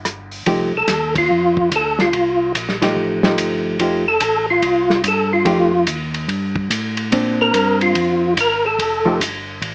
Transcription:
Already playing: tonewheel organ G1
0.05 cross-stick, closed hi-hat
0.31 open hi-hat
0.46 tonewheel organ C2, hollow-body jazz guitar F3 A3 D#4 G4, kick, ride
0.75 tonewheel organ C2 A4
0.88 tonewheel organ D#2, kick, snare, hi-hat pedal, ride
1.15 tonewheel organ F4, kick, ride
1.30 tonewheel organ F2, kick
1.57 kick
1.72 tonewheel organ D2, kick, hi-hat pedal, ride
1.76 tonewheel organ A4
1.99 tonewheel organ F4, snare
2.13 tonewheel organ C2, kick, ride
2.55 tonewheel organ A#1, kick, hi-hat pedal, ride
2.69 snare
2.82 hollow-body jazz guitar F3 A3 D#4 G4, snare, ride
2.96 tonewheel organ A1, kick
3.23 hollow-body jazz guitar F3 A3 D#4 G4, snare
3.38 tonewheel organ G1, kick, hi-hat pedal, ride
3.79 tonewheel organ F1, hollow-body jazz guitar F3 A3 D#4 G4, kick, ride
4.08 tonewheel organ A4
4.20 tonewheel organ A1, kick, hi-hat pedal, ride
4.50 tonewheel organ F4
4.62 tonewheel organ C2, kick, ride
4.90 snare
5.04 tonewheel organ G2, kick, hi-hat pedal, ride
5.08 tonewheel organ A4
5.33 tonewheel organ F4
5.45 tonewheel organ F2, hollow-body jazz guitar F3 A3 D#4 G4, kick, ride
5.87 tonewheel organ D#2, kick, hi-hat pedal, ride
6.14 ride
6.28 tonewheel organ G2, kick, ride
6.55 kick
6.70 tonewheel organ A2, kick, hi-hat pedal, ride
6.97 ride
7.12 tonewheel organ A#2, hollow-body jazz guitar C4 D4, kick, ride
7.41 tonewheel organ A#4
7.54 tonewheel organ G2, kick, hi-hat pedal, ride
7.81 tonewheel organ F4, ride
7.95 tonewheel organ F2, kick, ride
8.37 tonewheel organ G#1 A#4, kick, hi-hat pedal, ride
8.66 tonewheel organ A4
8.78 tonewheel organ F1, kick, ride
9.05 hollow-body jazz guitar F3 A3 D#4 G4
9.20 tonewheel organ G1, kick, hi-hat pedal, ride
9.62 tonewheel organ A1, kick, ride

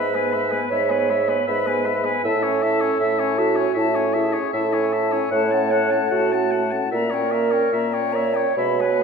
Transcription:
Already playing: bassoon G#2, french horn G#3, clarinet B4, oboe E5, flute B5
0.14 french horn B3, oboe B4, flute G#5
0.32 french horn G#3, oboe E5, flute B5
0.49 french horn B3, oboe B4, flute G#5
0.69 bassoon G#2, french horn G#3, clarinet C#5, oboe E5, flute B5
0.89 french horn B3, oboe B4, flute G#5
1.09 french horn G#3, oboe E5, flute B5
1.28 french horn B3, oboe B4, flute G#5
1.47 bassoon G#2, french horn G#3, clarinet B4, oboe E5, flute B5
1.66 french horn B3, oboe B4, flute G#5
1.86 french horn G#3, oboe E5, flute B5
2.04 french horn B3, oboe B4, flute G#5
2.23 bassoon A2, french horn E4, clarinet A4, oboe E5, flute A5
2.43 french horn C#4, oboe C#5, flute G#5
2.62 french horn E4, oboe E5, flute A5
2.81 french horn C#4, oboe C#5, flute G#5
3.00 bassoon A2, french horn E4, oboe E5, flute A5
3.19 french horn C#4, oboe C#5, flute G#5
3.38 french horn E4, clarinet F#4, oboe E5, flute A5
3.56 french horn C#4, oboe C#5, flute G#5
3.74 bassoon A2, french horn E4, clarinet E4, oboe E5, flute A5
3.95 french horn C#4, oboe C#5, flute G#5
4.13 french horn E4, clarinet G#4, oboe E5, flute A5
4.33 french horn C#4, oboe C#5, flute G#5
4.53 bassoon A2, french horn E4, clarinet A4, oboe E5, flute A5
4.73 french horn C#4, oboe C#5, flute G#5
4.93 french horn E4, oboe E5, flute A5
5.12 french horn C#4, oboe C#5, flute G#5
5.31 bassoon A2, french horn A3, clarinet C#5, oboe F#5, flute A5
5.51 french horn C#4, flute F#5, oboe A5
5.71 french horn A3, oboe F#5, flute A5
5.90 french horn C#4, flute F#5, oboe A5
6.11 bassoon A2, french horn A3, clarinet F#4, oboe F#5, flute A5
6.32 french horn C#4, flute F#5, oboe A5
6.51 french horn A3, oboe F#5, flute A5
6.71 french horn C#4, flute F#5, oboe A5
6.91 bassoon A#2, french horn A#3, clarinet A#4, oboe E5, flute A#5
7.10 french horn C#4, oboe C#5, flute G5
7.31 french horn A#3, oboe E5, flute A#5
7.51 french horn C#4, oboe C#5, flute G5
7.72 bassoon A#2, french horn A#3, oboe E5, flute A#5
7.93 french horn C#4, oboe C#5, flute G5
8.13 french horn A#3, clarinet C#5, oboe E5, flute A#5
8.34 french horn C#4, oboe C#5, flute G5
8.57 bassoon B2, french horn G#3, clarinet C#5, oboe E5, flute B5
8.80 french horn B3, oboe B4, flute G#5

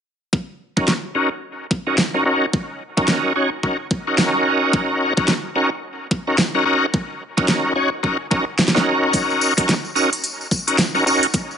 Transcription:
0.33 kick
0.77 tonewheel organ C#4 D#4 F#4 A#4, kick
0.88 snare
1.15 tonewheel organ C#4 D#4 F#4 A#4
1.71 kick
1.87 tonewheel organ C#4 D#4 F#4 A#4
1.98 snare
2.14 tonewheel organ C#4 D#4 F#4 A#4
2.25 tonewheel organ C#4 D#4 F#4 A#4
2.53 kick
2.97 tonewheel organ C#4 D#4 F#4 A#4, kick
3.08 snare
3.36 tonewheel organ C#4 D#4 F#4 C#5
3.63 tonewheel organ C#4 D#4 F#4 A#4, kick
3.91 kick
4.07 tonewheel organ C#4 D#4 F#4 A#4
4.18 snare
4.73 kick
5.17 tonewheel organ C#4 D#4 F#4 A#4, kick
5.28 snare
5.55 tonewheel organ C#4 D#4 F#4 A#4
6.11 kick
6.27 tonewheel organ C#4 D#4 F#4 A#4
6.38 snare
6.55 tonewheel organ C#4 D#4 F#4 A#4
6.65 tonewheel organ C#4 D#4 F#4 A#4
6.94 kick
7.37 tonewheel organ C#4 D#4 F#4 A#4, kick
7.48 snare
7.75 tonewheel organ C#4 D#4 F#4 C#5
8.03 tonewheel organ C#4 D#4 F#4 A#4, kick
8.31 tonewheel organ C#4 D#4 F#4 A#4, kick
8.59 snare
8.68 snare
8.75 tonewheel organ C#4 D#4 F#4 A#4, snare
9.13 kick, closed hi-hat, tambourine
9.30 tambourine
9.41 tambourine
9.57 tonewheel organ C#4 D#4 F#4 A#4, kick, closed hi-hat, tambourine
9.69 snare, closed hi-hat, tambourine
9.85 tambourine
9.95 tonewheel organ C#4 D#4 F#4 A#4, tambourine
10.13 closed hi-hat, tambourine
10.24 closed hi-hat, tambourine
10.41 tambourine
10.51 kick, tambourine
10.67 tonewheel organ C#4 D#4 F#4 A#4, closed hi-hat, tambourine
10.79 snare, closed hi-hat, tambourine
10.95 tonewheel organ C#4 D#4 F#4 A#4, tambourine
11.06 tonewheel organ C#4 D#4 F#4 A#4, tambourine
11.23 closed hi-hat, tambourine
11.34 kick, closed hi-hat, tambourine
11.51 tambourine

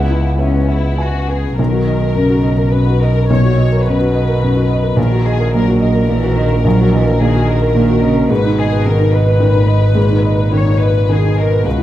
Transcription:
Already playing: grand piano C#2 F#5, double bass C#2, cello B3, violin section E4
0.09 grand piano E4
0.39 cello B3, violin section C#4, grand piano B4 E5
0.69 violin section E4, grand piano E5
0.98 violin section F#4, grand piano G#5
1.29 violin section G#4, grand piano B4
1.59 grand piano B1, double bass B1, cello D#3, violin section A#4
1.72 grand piano F#4
1.87 grand piano D#5
2.01 grand piano A#4
2.15 grand piano F#2, cello C#3
2.30 grand piano F#4
2.43 grand piano D#5
2.58 grand piano A#4
2.71 grand piano F#2, cello B2, violin section B4
2.86 grand piano F#4
3.01 violin section A#4, grand piano D#5
3.16 grand piano A#4
3.30 grand piano B1, cello A#2, violin section C#5
3.45 grand piano F#4
3.58 cello B2, grand piano D#5
3.72 grand piano A#4
3.86 grand piano F#2, violin section B4
4.00 grand piano F#4
4.14 grand piano D#5
4.28 grand piano A#4
4.42 grand piano F#2
4.56 grand piano F#4
4.69 grand piano D#5
4.82 grand piano A#4
4.96 grand piano A#1, double bass A#1, cello D#3, violin section A#4
5.12 grand piano F#4
5.24 violin section G#4, grand piano D#5
5.40 grand piano A#4
5.54 grand piano A#2, cello F#3, violin section A#4
5.68 grand piano F#4
5.80 violin section A#4, grand piano D#5
5.95 grand piano A#4
6.08 grand piano A#2, cello E3
6.23 grand piano F#4
6.36 cello D#3, grand piano D#5
6.52 grand piano A#4
6.64 grand piano A#1, cello F#3
6.80 grand piano F#4
6.93 cello E3, grand piano D#5
7.07 grand piano A#4
7.19 grand piano A#2, cello D#3, violin section G#4
7.34 grand piano F#4
7.48 violin section A#4, grand piano D#5
7.62 grand piano A#4
7.74 grand piano A#2, cello D#3
7.89 grand piano F#4
8.02 cello C#3, grand piano D#5
8.17 grand piano A#4
8.29 double bass G#1, grand piano G#2, cello B2, violin section B4
8.44 grand piano D#4
8.58 violin section G#4, grand piano D#5
8.72 grand piano B4
8.85 grand piano D#3, violin section A#4
8.99 grand piano D#4
9.12 violin section B4, grand piano D#5
9.27 grand piano B4
9.40 cello A#2, grand piano D#3
9.54 grand piano D#4
9.68 cello G#2, grand piano D#5
9.82 grand piano B4
9.95 grand piano G#2, cello A#2
10.10 grand piano D#4
10.24 grand piano D#5
10.37 grand piano B4
10.52 grand piano D#3, violin section C#5
10.66 grand piano D#4
10.79 violin section B4, grand piano D#5
10.94 grand piano B4
11.10 cello B2, grand piano D#3, violin section G#4
11.23 grand piano D#4
11.37 violin section A#4, grand piano D#5
11.51 grand piano B4
11.65 grand piano C#2, double bass C#2, violin section B4
11.78 grand piano E4

